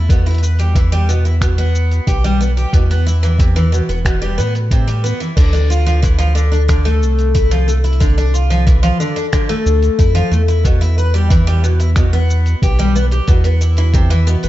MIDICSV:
0, 0, Header, 1, 4, 480
1, 0, Start_track
1, 0, Tempo, 659341
1, 69, Time_signature, 4, 2, 24, 8
1, 10547, End_track
2, 0, Start_track
2, 0, Title_t, "Twelve-string acoustic guitar"
2, 0, Program_c, 0, 25
2, 73, Note_on_c, 0, 47, 81
2, 179, Note_off_c, 0, 47, 0
2, 193, Note_on_c, 0, 64, 72
2, 299, Note_off_c, 0, 64, 0
2, 312, Note_on_c, 0, 71, 69
2, 419, Note_off_c, 0, 71, 0
2, 433, Note_on_c, 0, 55, 87
2, 539, Note_off_c, 0, 55, 0
2, 551, Note_on_c, 0, 52, 81
2, 658, Note_off_c, 0, 52, 0
2, 671, Note_on_c, 0, 55, 102
2, 778, Note_off_c, 0, 55, 0
2, 792, Note_on_c, 0, 47, 78
2, 899, Note_off_c, 0, 47, 0
2, 911, Note_on_c, 0, 64, 69
2, 978, Note_off_c, 0, 64, 0
2, 1031, Note_on_c, 0, 47, 81
2, 1138, Note_off_c, 0, 47, 0
2, 1151, Note_on_c, 0, 59, 90
2, 1498, Note_off_c, 0, 59, 0
2, 1508, Note_on_c, 0, 67, 81
2, 1623, Note_off_c, 0, 67, 0
2, 1633, Note_on_c, 0, 55, 105
2, 1739, Note_off_c, 0, 55, 0
2, 1751, Note_on_c, 0, 59, 78
2, 1818, Note_off_c, 0, 59, 0
2, 1872, Note_on_c, 0, 67, 70
2, 1985, Note_off_c, 0, 67, 0
2, 1994, Note_on_c, 0, 47, 82
2, 2100, Note_off_c, 0, 47, 0
2, 2118, Note_on_c, 0, 59, 74
2, 2221, Note_off_c, 0, 59, 0
2, 2232, Note_on_c, 0, 64, 75
2, 2338, Note_off_c, 0, 64, 0
2, 2351, Note_on_c, 0, 52, 90
2, 2458, Note_off_c, 0, 52, 0
2, 2471, Note_on_c, 0, 48, 78
2, 2578, Note_off_c, 0, 48, 0
2, 2592, Note_on_c, 0, 52, 98
2, 2698, Note_off_c, 0, 52, 0
2, 2710, Note_on_c, 0, 47, 83
2, 2818, Note_off_c, 0, 47, 0
2, 2832, Note_on_c, 0, 59, 74
2, 2899, Note_off_c, 0, 59, 0
2, 2951, Note_on_c, 0, 47, 82
2, 3058, Note_off_c, 0, 47, 0
2, 3070, Note_on_c, 0, 55, 92
2, 3177, Note_off_c, 0, 55, 0
2, 3188, Note_on_c, 0, 59, 88
2, 3297, Note_off_c, 0, 59, 0
2, 3431, Note_on_c, 0, 48, 78
2, 3538, Note_off_c, 0, 48, 0
2, 3549, Note_on_c, 0, 55, 77
2, 3657, Note_off_c, 0, 55, 0
2, 3668, Note_on_c, 0, 59, 80
2, 3776, Note_off_c, 0, 59, 0
2, 3788, Note_on_c, 0, 52, 70
2, 3896, Note_off_c, 0, 52, 0
2, 3908, Note_on_c, 0, 50, 83
2, 4017, Note_off_c, 0, 50, 0
2, 4026, Note_on_c, 0, 62, 75
2, 4135, Note_off_c, 0, 62, 0
2, 4150, Note_on_c, 0, 65, 72
2, 4258, Note_off_c, 0, 65, 0
2, 4269, Note_on_c, 0, 53, 91
2, 4377, Note_off_c, 0, 53, 0
2, 4386, Note_on_c, 0, 52, 82
2, 4496, Note_off_c, 0, 52, 0
2, 4503, Note_on_c, 0, 53, 103
2, 4614, Note_off_c, 0, 53, 0
2, 4623, Note_on_c, 0, 50, 83
2, 4734, Note_off_c, 0, 50, 0
2, 4744, Note_on_c, 0, 62, 74
2, 4815, Note_off_c, 0, 62, 0
2, 4866, Note_on_c, 0, 50, 77
2, 4976, Note_off_c, 0, 50, 0
2, 4988, Note_on_c, 0, 57, 92
2, 5336, Note_off_c, 0, 57, 0
2, 5347, Note_on_c, 0, 64, 84
2, 5462, Note_off_c, 0, 64, 0
2, 5469, Note_on_c, 0, 53, 102
2, 5577, Note_off_c, 0, 53, 0
2, 5589, Note_on_c, 0, 57, 79
2, 5658, Note_off_c, 0, 57, 0
2, 5708, Note_on_c, 0, 64, 70
2, 5822, Note_off_c, 0, 64, 0
2, 5826, Note_on_c, 0, 50, 84
2, 5936, Note_off_c, 0, 50, 0
2, 5952, Note_on_c, 0, 62, 76
2, 6059, Note_off_c, 0, 62, 0
2, 6071, Note_on_c, 0, 65, 74
2, 6178, Note_off_c, 0, 65, 0
2, 6191, Note_on_c, 0, 53, 97
2, 6298, Note_off_c, 0, 53, 0
2, 6309, Note_on_c, 0, 52, 76
2, 6417, Note_off_c, 0, 52, 0
2, 6427, Note_on_c, 0, 53, 107
2, 6536, Note_off_c, 0, 53, 0
2, 6552, Note_on_c, 0, 50, 81
2, 6659, Note_off_c, 0, 50, 0
2, 6670, Note_on_c, 0, 62, 74
2, 6738, Note_off_c, 0, 62, 0
2, 6789, Note_on_c, 0, 50, 85
2, 6897, Note_off_c, 0, 50, 0
2, 6910, Note_on_c, 0, 57, 100
2, 7258, Note_off_c, 0, 57, 0
2, 7270, Note_on_c, 0, 64, 82
2, 7384, Note_off_c, 0, 64, 0
2, 7387, Note_on_c, 0, 53, 102
2, 7496, Note_off_c, 0, 53, 0
2, 7509, Note_on_c, 0, 57, 76
2, 7578, Note_off_c, 0, 57, 0
2, 7631, Note_on_c, 0, 64, 77
2, 7744, Note_off_c, 0, 64, 0
2, 7753, Note_on_c, 0, 47, 82
2, 7859, Note_off_c, 0, 47, 0
2, 7870, Note_on_c, 0, 64, 77
2, 7978, Note_off_c, 0, 64, 0
2, 7992, Note_on_c, 0, 71, 68
2, 8099, Note_off_c, 0, 71, 0
2, 8109, Note_on_c, 0, 55, 94
2, 8217, Note_off_c, 0, 55, 0
2, 8228, Note_on_c, 0, 52, 86
2, 8337, Note_off_c, 0, 52, 0
2, 8350, Note_on_c, 0, 55, 105
2, 8458, Note_off_c, 0, 55, 0
2, 8472, Note_on_c, 0, 47, 79
2, 8578, Note_off_c, 0, 47, 0
2, 8591, Note_on_c, 0, 64, 73
2, 8659, Note_off_c, 0, 64, 0
2, 8711, Note_on_c, 0, 47, 85
2, 8818, Note_off_c, 0, 47, 0
2, 8832, Note_on_c, 0, 59, 99
2, 9179, Note_off_c, 0, 59, 0
2, 9194, Note_on_c, 0, 67, 82
2, 9306, Note_off_c, 0, 67, 0
2, 9313, Note_on_c, 0, 55, 102
2, 9419, Note_off_c, 0, 55, 0
2, 9432, Note_on_c, 0, 59, 81
2, 9499, Note_off_c, 0, 59, 0
2, 9552, Note_on_c, 0, 67, 77
2, 9664, Note_off_c, 0, 67, 0
2, 9670, Note_on_c, 0, 47, 85
2, 9778, Note_off_c, 0, 47, 0
2, 9791, Note_on_c, 0, 59, 72
2, 9898, Note_off_c, 0, 59, 0
2, 9908, Note_on_c, 0, 64, 68
2, 10017, Note_off_c, 0, 64, 0
2, 10030, Note_on_c, 0, 52, 94
2, 10138, Note_off_c, 0, 52, 0
2, 10151, Note_on_c, 0, 48, 84
2, 10258, Note_off_c, 0, 48, 0
2, 10268, Note_on_c, 0, 52, 100
2, 10377, Note_off_c, 0, 52, 0
2, 10387, Note_on_c, 0, 47, 81
2, 10496, Note_off_c, 0, 47, 0
2, 10510, Note_on_c, 0, 59, 74
2, 10547, Note_off_c, 0, 59, 0
2, 10547, End_track
3, 0, Start_track
3, 0, Title_t, "Analog synth bass"
3, 0, Program_c, 1, 38
3, 0, Note_on_c, 1, 40, 80
3, 1457, Note_off_c, 1, 40, 0
3, 1507, Note_on_c, 1, 35, 90
3, 1937, Note_off_c, 1, 35, 0
3, 1988, Note_on_c, 1, 40, 97
3, 2777, Note_off_c, 1, 40, 0
3, 2828, Note_on_c, 1, 28, 86
3, 3189, Note_on_c, 1, 45, 91
3, 3200, Note_off_c, 1, 28, 0
3, 3738, Note_off_c, 1, 45, 0
3, 3906, Note_on_c, 1, 38, 97
3, 5111, Note_on_c, 1, 36, 90
3, 5122, Note_off_c, 1, 38, 0
3, 6498, Note_off_c, 1, 36, 0
3, 7031, Note_on_c, 1, 38, 105
3, 7206, Note_off_c, 1, 38, 0
3, 7272, Note_on_c, 1, 41, 82
3, 7446, Note_off_c, 1, 41, 0
3, 7507, Note_on_c, 1, 40, 81
3, 9136, Note_off_c, 1, 40, 0
3, 9188, Note_on_c, 1, 35, 89
3, 9617, Note_off_c, 1, 35, 0
3, 9667, Note_on_c, 1, 40, 99
3, 10457, Note_off_c, 1, 40, 0
3, 10509, Note_on_c, 1, 28, 91
3, 10547, Note_off_c, 1, 28, 0
3, 10547, End_track
4, 0, Start_track
4, 0, Title_t, "Drums"
4, 68, Note_on_c, 9, 36, 104
4, 72, Note_on_c, 9, 42, 59
4, 77, Note_on_c, 9, 82, 41
4, 141, Note_off_c, 9, 36, 0
4, 145, Note_off_c, 9, 42, 0
4, 150, Note_off_c, 9, 82, 0
4, 190, Note_on_c, 9, 42, 21
4, 195, Note_on_c, 9, 82, 22
4, 223, Note_off_c, 9, 42, 0
4, 223, Note_on_c, 9, 42, 28
4, 251, Note_off_c, 9, 42, 0
4, 251, Note_on_c, 9, 42, 31
4, 268, Note_off_c, 9, 82, 0
4, 278, Note_off_c, 9, 42, 0
4, 278, Note_on_c, 9, 42, 35
4, 313, Note_on_c, 9, 82, 73
4, 351, Note_off_c, 9, 42, 0
4, 386, Note_off_c, 9, 82, 0
4, 428, Note_on_c, 9, 42, 28
4, 433, Note_on_c, 9, 82, 28
4, 500, Note_off_c, 9, 42, 0
4, 505, Note_off_c, 9, 82, 0
4, 547, Note_on_c, 9, 36, 97
4, 549, Note_on_c, 9, 42, 68
4, 554, Note_on_c, 9, 82, 40
4, 620, Note_off_c, 9, 36, 0
4, 622, Note_off_c, 9, 42, 0
4, 627, Note_off_c, 9, 82, 0
4, 672, Note_on_c, 9, 42, 45
4, 677, Note_on_c, 9, 82, 20
4, 744, Note_off_c, 9, 42, 0
4, 749, Note_off_c, 9, 82, 0
4, 796, Note_on_c, 9, 82, 72
4, 869, Note_off_c, 9, 82, 0
4, 915, Note_on_c, 9, 82, 32
4, 988, Note_off_c, 9, 82, 0
4, 1027, Note_on_c, 9, 36, 88
4, 1031, Note_on_c, 9, 26, 76
4, 1031, Note_on_c, 9, 42, 74
4, 1036, Note_on_c, 9, 82, 44
4, 1100, Note_off_c, 9, 36, 0
4, 1104, Note_off_c, 9, 26, 0
4, 1104, Note_off_c, 9, 42, 0
4, 1109, Note_off_c, 9, 82, 0
4, 1150, Note_on_c, 9, 42, 45
4, 1155, Note_on_c, 9, 82, 20
4, 1223, Note_off_c, 9, 42, 0
4, 1228, Note_off_c, 9, 82, 0
4, 1275, Note_on_c, 9, 82, 69
4, 1348, Note_off_c, 9, 82, 0
4, 1394, Note_on_c, 9, 42, 31
4, 1399, Note_on_c, 9, 82, 30
4, 1466, Note_off_c, 9, 42, 0
4, 1471, Note_off_c, 9, 82, 0
4, 1508, Note_on_c, 9, 36, 91
4, 1512, Note_on_c, 9, 42, 64
4, 1517, Note_on_c, 9, 82, 41
4, 1580, Note_off_c, 9, 36, 0
4, 1585, Note_off_c, 9, 42, 0
4, 1590, Note_off_c, 9, 82, 0
4, 1634, Note_on_c, 9, 42, 42
4, 1639, Note_on_c, 9, 82, 22
4, 1707, Note_off_c, 9, 42, 0
4, 1712, Note_off_c, 9, 82, 0
4, 1759, Note_on_c, 9, 82, 72
4, 1832, Note_off_c, 9, 82, 0
4, 1873, Note_on_c, 9, 42, 31
4, 1878, Note_on_c, 9, 82, 31
4, 1946, Note_off_c, 9, 42, 0
4, 1951, Note_off_c, 9, 82, 0
4, 1988, Note_on_c, 9, 36, 96
4, 1991, Note_on_c, 9, 42, 66
4, 1996, Note_on_c, 9, 82, 39
4, 2060, Note_off_c, 9, 36, 0
4, 2064, Note_off_c, 9, 42, 0
4, 2068, Note_off_c, 9, 82, 0
4, 2117, Note_on_c, 9, 42, 51
4, 2122, Note_on_c, 9, 82, 22
4, 2189, Note_off_c, 9, 42, 0
4, 2194, Note_off_c, 9, 82, 0
4, 2240, Note_on_c, 9, 82, 72
4, 2313, Note_off_c, 9, 82, 0
4, 2356, Note_on_c, 9, 42, 28
4, 2361, Note_on_c, 9, 82, 28
4, 2429, Note_off_c, 9, 42, 0
4, 2434, Note_off_c, 9, 82, 0
4, 2467, Note_on_c, 9, 36, 104
4, 2474, Note_on_c, 9, 42, 70
4, 2479, Note_on_c, 9, 82, 43
4, 2540, Note_off_c, 9, 36, 0
4, 2547, Note_off_c, 9, 42, 0
4, 2552, Note_off_c, 9, 82, 0
4, 2595, Note_on_c, 9, 42, 43
4, 2600, Note_on_c, 9, 82, 20
4, 2667, Note_off_c, 9, 42, 0
4, 2672, Note_off_c, 9, 82, 0
4, 2720, Note_on_c, 9, 82, 70
4, 2793, Note_off_c, 9, 82, 0
4, 2835, Note_on_c, 9, 42, 32
4, 2840, Note_on_c, 9, 82, 33
4, 2908, Note_off_c, 9, 42, 0
4, 2913, Note_off_c, 9, 82, 0
4, 2947, Note_on_c, 9, 36, 92
4, 2955, Note_on_c, 9, 26, 84
4, 2955, Note_on_c, 9, 42, 68
4, 2960, Note_on_c, 9, 82, 44
4, 3020, Note_off_c, 9, 36, 0
4, 3028, Note_off_c, 9, 26, 0
4, 3028, Note_off_c, 9, 42, 0
4, 3033, Note_off_c, 9, 82, 0
4, 3075, Note_on_c, 9, 42, 42
4, 3080, Note_on_c, 9, 82, 21
4, 3148, Note_off_c, 9, 42, 0
4, 3153, Note_off_c, 9, 82, 0
4, 3198, Note_on_c, 9, 82, 78
4, 3271, Note_off_c, 9, 82, 0
4, 3313, Note_on_c, 9, 42, 32
4, 3318, Note_on_c, 9, 82, 33
4, 3386, Note_off_c, 9, 42, 0
4, 3391, Note_off_c, 9, 82, 0
4, 3427, Note_on_c, 9, 36, 100
4, 3431, Note_on_c, 9, 42, 71
4, 3436, Note_on_c, 9, 82, 39
4, 3500, Note_off_c, 9, 36, 0
4, 3504, Note_off_c, 9, 42, 0
4, 3509, Note_off_c, 9, 82, 0
4, 3555, Note_on_c, 9, 42, 45
4, 3560, Note_on_c, 9, 82, 21
4, 3628, Note_off_c, 9, 42, 0
4, 3633, Note_off_c, 9, 82, 0
4, 3678, Note_on_c, 9, 82, 74
4, 3751, Note_off_c, 9, 82, 0
4, 3794, Note_on_c, 9, 42, 32
4, 3799, Note_on_c, 9, 82, 33
4, 3867, Note_off_c, 9, 42, 0
4, 3872, Note_off_c, 9, 82, 0
4, 3908, Note_on_c, 9, 36, 105
4, 3915, Note_on_c, 9, 42, 65
4, 3915, Note_on_c, 9, 49, 102
4, 3920, Note_on_c, 9, 82, 44
4, 3981, Note_off_c, 9, 36, 0
4, 3988, Note_off_c, 9, 42, 0
4, 3988, Note_off_c, 9, 49, 0
4, 3993, Note_off_c, 9, 82, 0
4, 4037, Note_on_c, 9, 42, 48
4, 4042, Note_on_c, 9, 82, 23
4, 4110, Note_off_c, 9, 42, 0
4, 4115, Note_off_c, 9, 82, 0
4, 4160, Note_on_c, 9, 82, 84
4, 4233, Note_off_c, 9, 82, 0
4, 4275, Note_on_c, 9, 42, 32
4, 4280, Note_on_c, 9, 82, 29
4, 4348, Note_off_c, 9, 42, 0
4, 4353, Note_off_c, 9, 82, 0
4, 4389, Note_on_c, 9, 36, 104
4, 4393, Note_on_c, 9, 42, 69
4, 4398, Note_on_c, 9, 82, 48
4, 4462, Note_off_c, 9, 36, 0
4, 4465, Note_off_c, 9, 42, 0
4, 4470, Note_off_c, 9, 82, 0
4, 4514, Note_on_c, 9, 42, 46
4, 4519, Note_on_c, 9, 82, 21
4, 4587, Note_off_c, 9, 42, 0
4, 4592, Note_off_c, 9, 82, 0
4, 4638, Note_on_c, 9, 82, 76
4, 4711, Note_off_c, 9, 82, 0
4, 4755, Note_on_c, 9, 42, 35
4, 4760, Note_on_c, 9, 82, 34
4, 4828, Note_off_c, 9, 42, 0
4, 4833, Note_off_c, 9, 82, 0
4, 4870, Note_on_c, 9, 36, 100
4, 4872, Note_on_c, 9, 26, 82
4, 4872, Note_on_c, 9, 42, 74
4, 4877, Note_on_c, 9, 82, 47
4, 4943, Note_off_c, 9, 36, 0
4, 4945, Note_off_c, 9, 26, 0
4, 4945, Note_off_c, 9, 42, 0
4, 4950, Note_off_c, 9, 82, 0
4, 4993, Note_on_c, 9, 42, 46
4, 4998, Note_on_c, 9, 82, 23
4, 5066, Note_off_c, 9, 42, 0
4, 5071, Note_off_c, 9, 82, 0
4, 5115, Note_on_c, 9, 82, 75
4, 5188, Note_off_c, 9, 82, 0
4, 5232, Note_on_c, 9, 42, 35
4, 5237, Note_on_c, 9, 82, 33
4, 5305, Note_off_c, 9, 42, 0
4, 5310, Note_off_c, 9, 82, 0
4, 5350, Note_on_c, 9, 36, 101
4, 5351, Note_on_c, 9, 42, 66
4, 5356, Note_on_c, 9, 82, 44
4, 5423, Note_off_c, 9, 36, 0
4, 5424, Note_off_c, 9, 42, 0
4, 5428, Note_off_c, 9, 82, 0
4, 5471, Note_on_c, 9, 42, 45
4, 5476, Note_on_c, 9, 82, 22
4, 5543, Note_off_c, 9, 42, 0
4, 5548, Note_off_c, 9, 82, 0
4, 5595, Note_on_c, 9, 82, 77
4, 5668, Note_off_c, 9, 82, 0
4, 5712, Note_on_c, 9, 42, 30
4, 5717, Note_on_c, 9, 82, 34
4, 5772, Note_off_c, 9, 42, 0
4, 5772, Note_on_c, 9, 42, 26
4, 5790, Note_off_c, 9, 82, 0
4, 5830, Note_on_c, 9, 36, 109
4, 5832, Note_off_c, 9, 42, 0
4, 5832, Note_on_c, 9, 42, 66
4, 5837, Note_on_c, 9, 82, 48
4, 5894, Note_off_c, 9, 42, 0
4, 5894, Note_on_c, 9, 42, 17
4, 5902, Note_off_c, 9, 36, 0
4, 5910, Note_off_c, 9, 82, 0
4, 5955, Note_off_c, 9, 42, 0
4, 5955, Note_on_c, 9, 42, 49
4, 5960, Note_on_c, 9, 82, 25
4, 6028, Note_off_c, 9, 42, 0
4, 6033, Note_off_c, 9, 82, 0
4, 6076, Note_on_c, 9, 82, 86
4, 6149, Note_off_c, 9, 82, 0
4, 6194, Note_on_c, 9, 42, 30
4, 6199, Note_on_c, 9, 82, 33
4, 6267, Note_off_c, 9, 42, 0
4, 6271, Note_off_c, 9, 82, 0
4, 6311, Note_on_c, 9, 36, 106
4, 6314, Note_on_c, 9, 42, 66
4, 6319, Note_on_c, 9, 82, 48
4, 6384, Note_off_c, 9, 36, 0
4, 6387, Note_off_c, 9, 42, 0
4, 6392, Note_off_c, 9, 82, 0
4, 6433, Note_on_c, 9, 42, 44
4, 6438, Note_on_c, 9, 82, 23
4, 6506, Note_off_c, 9, 42, 0
4, 6511, Note_off_c, 9, 82, 0
4, 6557, Note_on_c, 9, 82, 81
4, 6630, Note_off_c, 9, 82, 0
4, 6669, Note_on_c, 9, 42, 31
4, 6674, Note_on_c, 9, 82, 35
4, 6742, Note_off_c, 9, 42, 0
4, 6747, Note_off_c, 9, 82, 0
4, 6792, Note_on_c, 9, 26, 81
4, 6792, Note_on_c, 9, 36, 98
4, 6792, Note_on_c, 9, 42, 73
4, 6797, Note_on_c, 9, 82, 49
4, 6864, Note_off_c, 9, 36, 0
4, 6865, Note_off_c, 9, 26, 0
4, 6865, Note_off_c, 9, 42, 0
4, 6870, Note_off_c, 9, 82, 0
4, 6911, Note_on_c, 9, 42, 43
4, 6916, Note_on_c, 9, 82, 23
4, 6984, Note_off_c, 9, 42, 0
4, 6989, Note_off_c, 9, 82, 0
4, 7035, Note_on_c, 9, 82, 76
4, 7108, Note_off_c, 9, 82, 0
4, 7153, Note_on_c, 9, 42, 31
4, 7158, Note_on_c, 9, 82, 36
4, 7226, Note_off_c, 9, 42, 0
4, 7230, Note_off_c, 9, 82, 0
4, 7271, Note_on_c, 9, 36, 104
4, 7276, Note_on_c, 9, 42, 67
4, 7281, Note_on_c, 9, 82, 46
4, 7344, Note_off_c, 9, 36, 0
4, 7349, Note_off_c, 9, 42, 0
4, 7354, Note_off_c, 9, 82, 0
4, 7395, Note_on_c, 9, 42, 45
4, 7400, Note_on_c, 9, 82, 23
4, 7468, Note_off_c, 9, 42, 0
4, 7473, Note_off_c, 9, 82, 0
4, 7516, Note_on_c, 9, 82, 86
4, 7589, Note_off_c, 9, 82, 0
4, 7632, Note_on_c, 9, 42, 32
4, 7637, Note_on_c, 9, 82, 34
4, 7705, Note_off_c, 9, 42, 0
4, 7710, Note_off_c, 9, 82, 0
4, 7750, Note_on_c, 9, 36, 111
4, 7753, Note_on_c, 9, 42, 63
4, 7758, Note_on_c, 9, 82, 44
4, 7823, Note_off_c, 9, 36, 0
4, 7826, Note_off_c, 9, 42, 0
4, 7831, Note_off_c, 9, 82, 0
4, 7877, Note_on_c, 9, 42, 46
4, 7882, Note_on_c, 9, 82, 26
4, 7949, Note_off_c, 9, 42, 0
4, 7954, Note_off_c, 9, 82, 0
4, 7997, Note_on_c, 9, 82, 86
4, 8069, Note_off_c, 9, 82, 0
4, 8115, Note_on_c, 9, 42, 30
4, 8120, Note_on_c, 9, 82, 34
4, 8188, Note_off_c, 9, 42, 0
4, 8193, Note_off_c, 9, 82, 0
4, 8229, Note_on_c, 9, 36, 110
4, 8236, Note_on_c, 9, 42, 69
4, 8241, Note_on_c, 9, 82, 44
4, 8302, Note_off_c, 9, 36, 0
4, 8309, Note_off_c, 9, 42, 0
4, 8313, Note_off_c, 9, 82, 0
4, 8351, Note_on_c, 9, 42, 44
4, 8356, Note_on_c, 9, 82, 25
4, 8424, Note_off_c, 9, 42, 0
4, 8429, Note_off_c, 9, 82, 0
4, 8474, Note_on_c, 9, 82, 84
4, 8547, Note_off_c, 9, 82, 0
4, 8587, Note_on_c, 9, 42, 32
4, 8592, Note_on_c, 9, 82, 39
4, 8660, Note_off_c, 9, 42, 0
4, 8665, Note_off_c, 9, 82, 0
4, 8706, Note_on_c, 9, 26, 83
4, 8706, Note_on_c, 9, 42, 68
4, 8708, Note_on_c, 9, 36, 104
4, 8711, Note_on_c, 9, 82, 49
4, 8779, Note_off_c, 9, 26, 0
4, 8779, Note_off_c, 9, 42, 0
4, 8781, Note_off_c, 9, 36, 0
4, 8784, Note_off_c, 9, 82, 0
4, 8831, Note_on_c, 9, 42, 40
4, 8836, Note_on_c, 9, 82, 25
4, 8904, Note_off_c, 9, 42, 0
4, 8909, Note_off_c, 9, 82, 0
4, 8954, Note_on_c, 9, 82, 87
4, 9027, Note_off_c, 9, 82, 0
4, 9070, Note_on_c, 9, 42, 32
4, 9075, Note_on_c, 9, 82, 34
4, 9143, Note_off_c, 9, 42, 0
4, 9148, Note_off_c, 9, 82, 0
4, 9188, Note_on_c, 9, 36, 111
4, 9192, Note_on_c, 9, 42, 69
4, 9197, Note_on_c, 9, 82, 45
4, 9261, Note_off_c, 9, 36, 0
4, 9265, Note_off_c, 9, 42, 0
4, 9270, Note_off_c, 9, 82, 0
4, 9309, Note_on_c, 9, 42, 43
4, 9314, Note_on_c, 9, 82, 23
4, 9382, Note_off_c, 9, 42, 0
4, 9387, Note_off_c, 9, 82, 0
4, 9433, Note_on_c, 9, 82, 79
4, 9505, Note_off_c, 9, 82, 0
4, 9547, Note_on_c, 9, 42, 30
4, 9552, Note_on_c, 9, 82, 37
4, 9619, Note_off_c, 9, 42, 0
4, 9624, Note_off_c, 9, 82, 0
4, 9664, Note_on_c, 9, 42, 60
4, 9667, Note_on_c, 9, 36, 110
4, 9669, Note_on_c, 9, 82, 43
4, 9737, Note_off_c, 9, 42, 0
4, 9740, Note_off_c, 9, 36, 0
4, 9742, Note_off_c, 9, 82, 0
4, 9785, Note_on_c, 9, 42, 46
4, 9790, Note_on_c, 9, 82, 23
4, 9858, Note_off_c, 9, 42, 0
4, 9863, Note_off_c, 9, 82, 0
4, 9909, Note_on_c, 9, 82, 87
4, 9982, Note_off_c, 9, 82, 0
4, 10023, Note_on_c, 9, 42, 30
4, 10028, Note_on_c, 9, 82, 33
4, 10096, Note_off_c, 9, 42, 0
4, 10101, Note_off_c, 9, 82, 0
4, 10145, Note_on_c, 9, 42, 63
4, 10146, Note_on_c, 9, 36, 104
4, 10150, Note_on_c, 9, 82, 47
4, 10218, Note_off_c, 9, 42, 0
4, 10219, Note_off_c, 9, 36, 0
4, 10223, Note_off_c, 9, 82, 0
4, 10267, Note_on_c, 9, 42, 42
4, 10272, Note_on_c, 9, 82, 23
4, 10340, Note_off_c, 9, 42, 0
4, 10345, Note_off_c, 9, 82, 0
4, 10390, Note_on_c, 9, 82, 80
4, 10463, Note_off_c, 9, 82, 0
4, 10505, Note_on_c, 9, 42, 32
4, 10510, Note_on_c, 9, 82, 37
4, 10547, Note_off_c, 9, 42, 0
4, 10547, Note_off_c, 9, 82, 0
4, 10547, End_track
0, 0, End_of_file